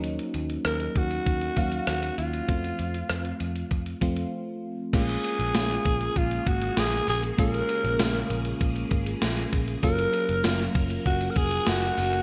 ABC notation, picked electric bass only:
X:1
M:4/4
L:1/16
Q:1/4=98
K:Fphr
V:1 name="Picked electric bass" clef=bass
E,,2 E,,2 E,,2 E,,2 E,,2 E,,2 E,,2 E,,2 | F,,2 F,,2 F,,2 F,,2 F,,2 F,,2 z4 | [K:Bbm] B,,,2 z B,,, B,,,2 B,,,2 B,,,2 A,,,2 B,,,2 B,,,2 | B,,,2 z B,,, B,,,2 B,,,2 B,,,2 A,,,2 B,,,2 B,,,2 |
G,,,2 z G,,, G,,,2 G,,,2 G,,,2 F,,,2 G,,,2 G,,,2 |]